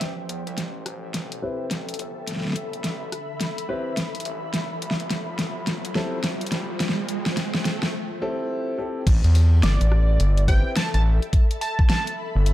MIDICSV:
0, 0, Header, 1, 7, 480
1, 0, Start_track
1, 0, Key_signature, 0, "minor"
1, 0, Tempo, 566038
1, 9, Time_signature, 4, 2, 24, 8
1, 10630, End_track
2, 0, Start_track
2, 0, Title_t, "Digital synth lead"
2, 0, Program_c, 0, 84
2, 8168, Note_on_c, 0, 74, 99
2, 8852, Note_off_c, 0, 74, 0
2, 8889, Note_on_c, 0, 79, 94
2, 9092, Note_off_c, 0, 79, 0
2, 9130, Note_on_c, 0, 81, 93
2, 9225, Note_off_c, 0, 81, 0
2, 9280, Note_on_c, 0, 81, 76
2, 9337, Note_off_c, 0, 81, 0
2, 9848, Note_on_c, 0, 81, 93
2, 10070, Note_off_c, 0, 81, 0
2, 10089, Note_on_c, 0, 81, 95
2, 10293, Note_off_c, 0, 81, 0
2, 10630, End_track
3, 0, Start_track
3, 0, Title_t, "Ambient pad"
3, 0, Program_c, 1, 92
3, 0, Note_on_c, 1, 72, 87
3, 0, Note_on_c, 1, 79, 73
3, 5, Note_on_c, 1, 69, 83
3, 523, Note_on_c, 1, 76, 72
3, 891, Note_off_c, 1, 72, 0
3, 1279, Note_on_c, 1, 83, 77
3, 1500, Note_off_c, 1, 79, 0
3, 3848, Note_on_c, 1, 65, 90
3, 4499, Note_off_c, 1, 76, 0
3, 4524, Note_on_c, 1, 72, 89
3, 4560, Note_off_c, 1, 83, 0
3, 4773, Note_off_c, 1, 69, 0
3, 5129, Note_on_c, 1, 79, 89
3, 6729, Note_off_c, 1, 65, 0
3, 6729, Note_off_c, 1, 72, 0
3, 6731, Note_off_c, 1, 79, 0
3, 7687, Note_on_c, 1, 69, 81
3, 8031, Note_on_c, 1, 76, 83
3, 9023, Note_on_c, 1, 83, 88
3, 10630, Note_off_c, 1, 69, 0
3, 10630, Note_off_c, 1, 76, 0
3, 10630, Note_off_c, 1, 83, 0
3, 10630, End_track
4, 0, Start_track
4, 0, Title_t, "Grand piano"
4, 0, Program_c, 2, 0
4, 1208, Note_on_c, 2, 60, 91
4, 1208, Note_on_c, 2, 64, 86
4, 1208, Note_on_c, 2, 67, 84
4, 1208, Note_on_c, 2, 71, 104
4, 1397, Note_off_c, 2, 60, 0
4, 1397, Note_off_c, 2, 64, 0
4, 1397, Note_off_c, 2, 67, 0
4, 1397, Note_off_c, 2, 71, 0
4, 3128, Note_on_c, 2, 60, 96
4, 3128, Note_on_c, 2, 67, 88
4, 3128, Note_on_c, 2, 71, 107
4, 3129, Note_on_c, 2, 64, 88
4, 3317, Note_off_c, 2, 60, 0
4, 3317, Note_off_c, 2, 64, 0
4, 3317, Note_off_c, 2, 67, 0
4, 3317, Note_off_c, 2, 71, 0
4, 5048, Note_on_c, 2, 60, 99
4, 5048, Note_on_c, 2, 64, 89
4, 5048, Note_on_c, 2, 67, 91
4, 5048, Note_on_c, 2, 69, 110
4, 5237, Note_off_c, 2, 60, 0
4, 5237, Note_off_c, 2, 64, 0
4, 5237, Note_off_c, 2, 67, 0
4, 5237, Note_off_c, 2, 69, 0
4, 6969, Note_on_c, 2, 60, 98
4, 6969, Note_on_c, 2, 67, 88
4, 6969, Note_on_c, 2, 69, 111
4, 6970, Note_on_c, 2, 64, 91
4, 7427, Note_off_c, 2, 60, 0
4, 7427, Note_off_c, 2, 67, 0
4, 7427, Note_off_c, 2, 69, 0
4, 7428, Note_off_c, 2, 64, 0
4, 7449, Note_on_c, 2, 60, 76
4, 7449, Note_on_c, 2, 64, 70
4, 7449, Note_on_c, 2, 67, 70
4, 7449, Note_on_c, 2, 69, 82
4, 7637, Note_off_c, 2, 60, 0
4, 7637, Note_off_c, 2, 64, 0
4, 7637, Note_off_c, 2, 67, 0
4, 7637, Note_off_c, 2, 69, 0
4, 8889, Note_on_c, 2, 67, 93
4, 8890, Note_on_c, 2, 60, 99
4, 8890, Note_on_c, 2, 64, 90
4, 8890, Note_on_c, 2, 71, 110
4, 9077, Note_off_c, 2, 67, 0
4, 9078, Note_off_c, 2, 60, 0
4, 9078, Note_off_c, 2, 64, 0
4, 9078, Note_off_c, 2, 71, 0
4, 10630, End_track
5, 0, Start_track
5, 0, Title_t, "Analog synth bass"
5, 0, Program_c, 3, 38
5, 7, Note_on_c, 3, 33, 94
5, 233, Note_off_c, 3, 33, 0
5, 246, Note_on_c, 3, 40, 91
5, 373, Note_off_c, 3, 40, 0
5, 397, Note_on_c, 3, 36, 99
5, 474, Note_off_c, 3, 36, 0
5, 486, Note_on_c, 3, 33, 90
5, 713, Note_off_c, 3, 33, 0
5, 727, Note_on_c, 3, 33, 92
5, 954, Note_off_c, 3, 33, 0
5, 966, Note_on_c, 3, 33, 98
5, 1193, Note_off_c, 3, 33, 0
5, 1447, Note_on_c, 3, 33, 96
5, 1674, Note_off_c, 3, 33, 0
5, 1687, Note_on_c, 3, 31, 94
5, 2393, Note_off_c, 3, 31, 0
5, 2406, Note_on_c, 3, 33, 97
5, 2633, Note_off_c, 3, 33, 0
5, 3606, Note_on_c, 3, 33, 98
5, 3833, Note_off_c, 3, 33, 0
5, 3846, Note_on_c, 3, 29, 97
5, 4073, Note_off_c, 3, 29, 0
5, 4085, Note_on_c, 3, 36, 94
5, 4213, Note_off_c, 3, 36, 0
5, 4237, Note_on_c, 3, 33, 96
5, 4314, Note_off_c, 3, 33, 0
5, 4326, Note_on_c, 3, 29, 97
5, 4553, Note_off_c, 3, 29, 0
5, 4567, Note_on_c, 3, 29, 96
5, 4794, Note_off_c, 3, 29, 0
5, 4807, Note_on_c, 3, 29, 100
5, 5034, Note_off_c, 3, 29, 0
5, 5288, Note_on_c, 3, 29, 100
5, 5514, Note_off_c, 3, 29, 0
5, 5528, Note_on_c, 3, 36, 96
5, 6234, Note_off_c, 3, 36, 0
5, 6248, Note_on_c, 3, 29, 96
5, 6474, Note_off_c, 3, 29, 0
5, 7688, Note_on_c, 3, 33, 95
5, 7814, Note_off_c, 3, 33, 0
5, 7838, Note_on_c, 3, 40, 99
5, 8154, Note_off_c, 3, 40, 0
5, 8168, Note_on_c, 3, 31, 96
5, 8294, Note_off_c, 3, 31, 0
5, 8317, Note_on_c, 3, 33, 97
5, 8634, Note_off_c, 3, 33, 0
5, 8648, Note_on_c, 3, 31, 101
5, 9014, Note_off_c, 3, 31, 0
5, 9278, Note_on_c, 3, 33, 98
5, 9494, Note_off_c, 3, 33, 0
5, 10477, Note_on_c, 3, 31, 98
5, 10630, Note_off_c, 3, 31, 0
5, 10630, End_track
6, 0, Start_track
6, 0, Title_t, "Riser"
6, 0, Program_c, 4, 103
6, 8, Note_on_c, 4, 60, 77
6, 6729, Note_off_c, 4, 60, 0
6, 10630, End_track
7, 0, Start_track
7, 0, Title_t, "Drums"
7, 8, Note_on_c, 9, 38, 47
7, 8, Note_on_c, 9, 42, 78
7, 93, Note_off_c, 9, 38, 0
7, 93, Note_off_c, 9, 42, 0
7, 248, Note_on_c, 9, 42, 67
7, 333, Note_off_c, 9, 42, 0
7, 399, Note_on_c, 9, 42, 37
7, 484, Note_off_c, 9, 42, 0
7, 489, Note_on_c, 9, 38, 49
7, 489, Note_on_c, 9, 42, 77
7, 573, Note_off_c, 9, 38, 0
7, 573, Note_off_c, 9, 42, 0
7, 729, Note_on_c, 9, 37, 55
7, 729, Note_on_c, 9, 42, 70
7, 813, Note_off_c, 9, 37, 0
7, 813, Note_off_c, 9, 42, 0
7, 968, Note_on_c, 9, 38, 52
7, 968, Note_on_c, 9, 42, 82
7, 1052, Note_off_c, 9, 38, 0
7, 1052, Note_off_c, 9, 42, 0
7, 1119, Note_on_c, 9, 42, 68
7, 1203, Note_off_c, 9, 42, 0
7, 1449, Note_on_c, 9, 38, 54
7, 1449, Note_on_c, 9, 42, 80
7, 1534, Note_off_c, 9, 38, 0
7, 1534, Note_off_c, 9, 42, 0
7, 1599, Note_on_c, 9, 42, 49
7, 1644, Note_off_c, 9, 42, 0
7, 1644, Note_on_c, 9, 42, 67
7, 1689, Note_off_c, 9, 42, 0
7, 1689, Note_on_c, 9, 42, 67
7, 1774, Note_off_c, 9, 42, 0
7, 1929, Note_on_c, 9, 38, 25
7, 1929, Note_on_c, 9, 42, 81
7, 1967, Note_off_c, 9, 38, 0
7, 1967, Note_on_c, 9, 38, 29
7, 2003, Note_off_c, 9, 38, 0
7, 2003, Note_on_c, 9, 38, 32
7, 2014, Note_off_c, 9, 42, 0
7, 2041, Note_off_c, 9, 38, 0
7, 2041, Note_on_c, 9, 38, 36
7, 2079, Note_off_c, 9, 38, 0
7, 2079, Note_on_c, 9, 38, 40
7, 2101, Note_off_c, 9, 38, 0
7, 2101, Note_on_c, 9, 38, 45
7, 2124, Note_off_c, 9, 38, 0
7, 2124, Note_on_c, 9, 38, 50
7, 2147, Note_off_c, 9, 38, 0
7, 2147, Note_on_c, 9, 38, 52
7, 2169, Note_on_c, 9, 42, 71
7, 2231, Note_off_c, 9, 38, 0
7, 2254, Note_off_c, 9, 42, 0
7, 2318, Note_on_c, 9, 42, 37
7, 2403, Note_off_c, 9, 42, 0
7, 2409, Note_on_c, 9, 38, 60
7, 2409, Note_on_c, 9, 42, 79
7, 2493, Note_off_c, 9, 38, 0
7, 2493, Note_off_c, 9, 42, 0
7, 2649, Note_on_c, 9, 37, 52
7, 2649, Note_on_c, 9, 42, 72
7, 2734, Note_off_c, 9, 37, 0
7, 2734, Note_off_c, 9, 42, 0
7, 2888, Note_on_c, 9, 38, 67
7, 2888, Note_on_c, 9, 42, 81
7, 2973, Note_off_c, 9, 38, 0
7, 2973, Note_off_c, 9, 42, 0
7, 3038, Note_on_c, 9, 42, 67
7, 3123, Note_off_c, 9, 42, 0
7, 3367, Note_on_c, 9, 38, 68
7, 3367, Note_on_c, 9, 42, 79
7, 3452, Note_off_c, 9, 38, 0
7, 3452, Note_off_c, 9, 42, 0
7, 3518, Note_on_c, 9, 42, 50
7, 3562, Note_off_c, 9, 42, 0
7, 3562, Note_on_c, 9, 42, 64
7, 3606, Note_off_c, 9, 42, 0
7, 3606, Note_on_c, 9, 42, 70
7, 3691, Note_off_c, 9, 42, 0
7, 3847, Note_on_c, 9, 38, 73
7, 3847, Note_on_c, 9, 42, 79
7, 3932, Note_off_c, 9, 38, 0
7, 3932, Note_off_c, 9, 42, 0
7, 4087, Note_on_c, 9, 42, 69
7, 4162, Note_on_c, 9, 38, 76
7, 4172, Note_off_c, 9, 42, 0
7, 4239, Note_on_c, 9, 42, 37
7, 4247, Note_off_c, 9, 38, 0
7, 4323, Note_off_c, 9, 42, 0
7, 4329, Note_on_c, 9, 38, 75
7, 4329, Note_on_c, 9, 42, 78
7, 4414, Note_off_c, 9, 38, 0
7, 4414, Note_off_c, 9, 42, 0
7, 4568, Note_on_c, 9, 38, 81
7, 4568, Note_on_c, 9, 42, 67
7, 4653, Note_off_c, 9, 38, 0
7, 4653, Note_off_c, 9, 42, 0
7, 4809, Note_on_c, 9, 38, 82
7, 4809, Note_on_c, 9, 42, 84
7, 4894, Note_off_c, 9, 38, 0
7, 4894, Note_off_c, 9, 42, 0
7, 4959, Note_on_c, 9, 42, 69
7, 5043, Note_off_c, 9, 42, 0
7, 5049, Note_on_c, 9, 38, 87
7, 5133, Note_off_c, 9, 38, 0
7, 5288, Note_on_c, 9, 38, 86
7, 5288, Note_on_c, 9, 42, 81
7, 5373, Note_off_c, 9, 38, 0
7, 5373, Note_off_c, 9, 42, 0
7, 5437, Note_on_c, 9, 42, 50
7, 5482, Note_off_c, 9, 42, 0
7, 5482, Note_on_c, 9, 42, 66
7, 5527, Note_off_c, 9, 42, 0
7, 5527, Note_on_c, 9, 38, 90
7, 5527, Note_on_c, 9, 42, 70
7, 5611, Note_off_c, 9, 38, 0
7, 5611, Note_off_c, 9, 42, 0
7, 5768, Note_on_c, 9, 38, 91
7, 5768, Note_on_c, 9, 42, 78
7, 5843, Note_off_c, 9, 38, 0
7, 5843, Note_on_c, 9, 38, 81
7, 5853, Note_off_c, 9, 42, 0
7, 5928, Note_off_c, 9, 38, 0
7, 6008, Note_on_c, 9, 42, 70
7, 6093, Note_off_c, 9, 42, 0
7, 6158, Note_on_c, 9, 38, 85
7, 6158, Note_on_c, 9, 42, 37
7, 6242, Note_off_c, 9, 38, 0
7, 6242, Note_off_c, 9, 42, 0
7, 6249, Note_on_c, 9, 38, 94
7, 6249, Note_on_c, 9, 42, 76
7, 6334, Note_off_c, 9, 38, 0
7, 6334, Note_off_c, 9, 42, 0
7, 6398, Note_on_c, 9, 38, 87
7, 6483, Note_off_c, 9, 38, 0
7, 6489, Note_on_c, 9, 38, 102
7, 6489, Note_on_c, 9, 42, 66
7, 6574, Note_off_c, 9, 38, 0
7, 6574, Note_off_c, 9, 42, 0
7, 6638, Note_on_c, 9, 38, 91
7, 6723, Note_off_c, 9, 38, 0
7, 7689, Note_on_c, 9, 36, 121
7, 7690, Note_on_c, 9, 42, 84
7, 7690, Note_on_c, 9, 49, 105
7, 7774, Note_off_c, 9, 36, 0
7, 7775, Note_off_c, 9, 42, 0
7, 7775, Note_off_c, 9, 49, 0
7, 7838, Note_on_c, 9, 42, 57
7, 7923, Note_off_c, 9, 42, 0
7, 7929, Note_on_c, 9, 46, 64
7, 8014, Note_off_c, 9, 46, 0
7, 8168, Note_on_c, 9, 38, 119
7, 8168, Note_on_c, 9, 42, 84
7, 8253, Note_off_c, 9, 38, 0
7, 8253, Note_off_c, 9, 42, 0
7, 8318, Note_on_c, 9, 42, 54
7, 8403, Note_off_c, 9, 42, 0
7, 8409, Note_on_c, 9, 37, 56
7, 8494, Note_off_c, 9, 37, 0
7, 8648, Note_on_c, 9, 42, 84
7, 8733, Note_off_c, 9, 42, 0
7, 8798, Note_on_c, 9, 42, 56
7, 8883, Note_off_c, 9, 42, 0
7, 8888, Note_on_c, 9, 36, 111
7, 8888, Note_on_c, 9, 46, 63
7, 8973, Note_off_c, 9, 36, 0
7, 8973, Note_off_c, 9, 46, 0
7, 9128, Note_on_c, 9, 38, 118
7, 9128, Note_on_c, 9, 42, 84
7, 9213, Note_off_c, 9, 38, 0
7, 9213, Note_off_c, 9, 42, 0
7, 9279, Note_on_c, 9, 42, 55
7, 9363, Note_off_c, 9, 42, 0
7, 9518, Note_on_c, 9, 42, 39
7, 9603, Note_off_c, 9, 42, 0
7, 9607, Note_on_c, 9, 36, 122
7, 9608, Note_on_c, 9, 42, 83
7, 9692, Note_off_c, 9, 36, 0
7, 9693, Note_off_c, 9, 42, 0
7, 9758, Note_on_c, 9, 42, 58
7, 9843, Note_off_c, 9, 42, 0
7, 9849, Note_on_c, 9, 46, 64
7, 9933, Note_off_c, 9, 46, 0
7, 9997, Note_on_c, 9, 36, 109
7, 10082, Note_off_c, 9, 36, 0
7, 10088, Note_on_c, 9, 38, 124
7, 10088, Note_on_c, 9, 42, 80
7, 10173, Note_off_c, 9, 38, 0
7, 10173, Note_off_c, 9, 42, 0
7, 10238, Note_on_c, 9, 42, 57
7, 10322, Note_off_c, 9, 42, 0
7, 10568, Note_on_c, 9, 42, 82
7, 10630, Note_off_c, 9, 42, 0
7, 10630, End_track
0, 0, End_of_file